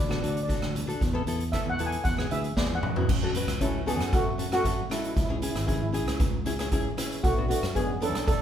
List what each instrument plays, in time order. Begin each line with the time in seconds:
Already playing: fingered electric bass D2
0.09 nylon-string guitar D4 F#4 A4, cross-stick, high conga
0.15 steel pan D5
0.21 fingered electric bass D2, nylon-string guitar D4 F#4 A4, steel pan D5, closed hi-hat
0.28 steel pan D5
0.35 steel pan D5, closed hi-hat
0.43 steel pan D5
0.48 nylon-string guitar D4 F#4 A4, kick, closed hi-hat
0.62 fingered electric bass D2, cross-stick
0.75 closed hi-hat, low conga
0.87 nylon-string guitar D4 F#4 A4, closed hi-hat
1.01 fingered electric bass E2, kick, closed hi-hat
1.13 nylon-string guitar B3 E4 A4
1.26 fingered electric bass E2, nylon-string guitar B3 E4 A4, closed hi-hat
1.40 closed hi-hat
1.52 nylon-string guitar B3 E4 A4, steel pan E5, kick, cross-stick, closed hi-hat
1.66 fingered electric bass E2, steel pan F#5, high conga
1.78 nylon-string guitar B3 E4 A4, closed hi-hat, low conga
1.86 steel pan G#5
1.92 closed hi-hat
2.04 fingered electric bass E2, steel pan F#5, kick, closed hi-hat, high conga
2.17 nylon-string guitar B3 E4 G#4, cross-stick, high conga
2.31 fingered electric bass D2, nylon-string guitar B3 E4 G#4, steel pan E5, closed hi-hat
2.44 closed hi-hat
2.56 fingered electric bass E2, nylon-string guitar B3 E4 G#4, steel pan D5, kick, snare
2.70 high tom
2.75 steel pan F#5
2.82 fingered electric bass F#2, mid tom
2.96 nylon-string guitar B3 E4 F#4, floor tom
3.09 fingered electric bass F#2, kick, crash
3.22 nylon-string guitar C#4 F#4 A4
3.35 nylon-string guitar C#4 F#4 B4, closed hi-hat
3.47 fingered electric bass C#2, cross-stick, closed hi-hat
3.60 nylon-string guitar C#4 F#4 A4, steel pan C#4 E4, kick, closed hi-hat
3.86 steel pan B3 G#4, nylon-string guitar C#4 F#4 A4, closed hi-hat
4.00 fingered electric bass F#2, cross-stick, closed hi-hat
4.13 steel pan A3 F#4, kick, closed hi-hat
4.38 nylon-string guitar C#4 F#4 A4, closed hi-hat
4.51 steel pan A3 F#4, nylon-string guitar C#4 F#4 A4, cross-stick, closed hi-hat
4.64 nylon-string guitar C#4 F#4 A4, kick, closed hi-hat
4.90 steel pan G#3 E4, nylon-string guitar C#4 F#4 A4, cross-stick, closed hi-hat
4.99 steel pan E4
5.04 steel pan E4, closed hi-hat
5.15 fingered electric bass C#2, steel pan E4, kick, closed hi-hat
5.22 steel pan E4
5.29 nylon-string guitar C#4 E4 G#4, steel pan E4
5.37 steel pan E4
5.42 nylon-string guitar C#4 E4 G#4, steel pan E4, closed hi-hat
5.51 steel pan E4
5.55 fingered electric bass G#1, steel pan E4, cross-stick, closed hi-hat
5.67 nylon-string guitar C#4 E4 G#4, steel pan E4, kick, closed hi-hat
5.74 steel pan E4
5.83 steel pan E4
5.92 nylon-string guitar C#4 E4 G#4, closed hi-hat
6.07 fingered electric bass C#2, cross-stick, closed hi-hat
6.20 kick, closed hi-hat
6.46 nylon-string guitar C#4 E4 G#4, closed hi-hat
6.59 nylon-string guitar C#4 E4 G#4, cross-stick, closed hi-hat
6.72 nylon-string guitar C#4 E4 G#4, kick, closed hi-hat
6.97 nylon-string guitar C#4 E4 G#4, cross-stick, closed hi-hat
7.12 closed hi-hat
7.23 fingered electric bass B1, steel pan A3 F#4, kick, closed hi-hat
7.36 nylon-string guitar B3 D4 F#4
7.48 steel pan A3 F#4, nylon-string guitar B3 D4 F#4, closed hi-hat
7.63 fingered electric bass F#2, cross-stick, closed hi-hat
7.75 nylon-string guitar B3 D4 G#4, steel pan B3 G#4, kick, closed hi-hat
8.01 nylon-string guitar B3 D4 E4, steel pan C#4 A4, closed hi-hat
8.14 fingered electric bass B1, cross-stick, closed hi-hat
8.28 steel pan D4 A4, kick, closed hi-hat